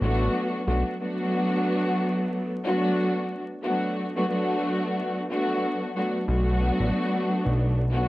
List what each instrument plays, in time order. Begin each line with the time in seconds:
0.01 analog synth bass A1, string section F#3 A3 B3 D4 F#4
0.67 analog synth bass B1, string section F#3 A3 B3 D4 F#4
0.99 string section F#3 A3 B3 D4 F#4
2.64 string section F#3 A3 B3 D4 F#4
3.62 string section F#3 A3 B3 D4 F#4
4.15 string section F#3 A3 B3 D4 F#4
4.28 string section F#3 A3 B3 D4 F#4
5.29 string section F#3 A3 B3 D4 F#4
5.95 string section F#3 A3 B3 D4 F#4
6.27 analog synth bass B1, string section F#3 A3 B3 D4 F#4
6.80 analog synth bass A1
7.46 analog synth bass B1
7.92 string section F#3 A3 B3 D4 F#4